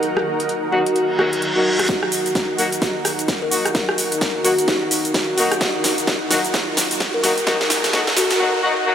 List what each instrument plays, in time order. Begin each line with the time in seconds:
Already playing: ambient pad D#4 F#4 A#4 F#5
0.03 closed hi-hat
0.17 cross-stick
0.40 closed hi-hat
0.49 closed hi-hat
0.72 horn section F#3 A#3 D#4 F#4, kalimba F#4
0.86 closed hi-hat
0.96 closed hi-hat, reverse cymbal
1.19 horn section F#3 A#3 D#4 F#4, cross-stick
1.33 closed hi-hat
1.42 closed hi-hat
1.56 horn section F#3 A#3 D#4 F#4, kalimba F#4
1.79 cross-stick, closed hi-hat
1.89 kick, snare, closed hi-hat, riser, shaker
2.03 cross-stick
2.12 open hi-hat, shaker
2.26 closed hi-hat, shaker
2.35 kick, snare, closed hi-hat, shaker
2.58 horn section F#3 A#3 D#4 F#4, open hi-hat, shaker
2.72 closed hi-hat, shaker
2.82 kick, snare, closed hi-hat, shaker
3.05 cross-stick, open hi-hat, shaker
3.19 closed hi-hat, shaker
3.28 kick, snare, closed hi-hat, shaker
3.42 kalimba A#4
3.51 horn section F#3 A#3 D#4 F#4, open hi-hat, shaker
3.65 cross-stick, closed hi-hat, shaker
3.75 kick, snare, closed hi-hat, shaker
3.89 cross-stick
3.98 open hi-hat, shaker
4.12 closed hi-hat, shaker
4.21 kick, snare, closed hi-hat, shaker
4.45 horn section F#3 A#3 D#4 F#4, kalimba F#4, open hi-hat, shaker
4.58 closed hi-hat, shaker
4.68 kalimba D#4, kick, snare, closed hi-hat, shaker
4.82 kalimba D#4
4.91 kalimba D#4, open hi-hat, shaker
5.05 closed hi-hat, shaker
5.14 kick, snare, closed hi-hat, shaker
5.38 horn section F#3 A#3 D#4 F#4, open hi-hat, shaker
5.52 cross-stick, closed hi-hat, shaker
5.61 kick, snare, closed hi-hat, shaker
5.84 snare, open hi-hat, shaker
5.98 closed hi-hat, shaker
6.07 kick, snare, closed hi-hat, shaker
6.31 horn section F#3 A#3 D#4 F#4, snare, open hi-hat, shaker
6.45 closed hi-hat, shaker
6.54 kick, snare, closed hi-hat, shaker
6.77 snare, open hi-hat, shaker
6.91 closed hi-hat, shaker
7.00 kick, snare, closed hi-hat, shaker
7.14 kalimba A#4
7.24 horn section F#3 A#3 D#4 F#4, snare, open hi-hat, shaker
7.38 closed hi-hat, shaker
7.47 horn section F#3 A#3 D#4 F#4, kick, snare, closed hi-hat, shaker
7.61 snare
7.70 snare, open hi-hat, shaker
7.84 snare, closed hi-hat, shaker
7.93 horn section F#3 A#3 D#4 F#4, kick, snare, closed hi-hat, shaker
8.07 snare
8.17 kalimba F#4, snare, open hi-hat, shaker
8.31 snare, closed hi-hat, shaker
8.40 horn section F#3 A#3 D#4 F#4, swell
8.63 horn section F#3 A#3 D#4 F#4
8.86 horn section F#3 A#3 D#4 F#4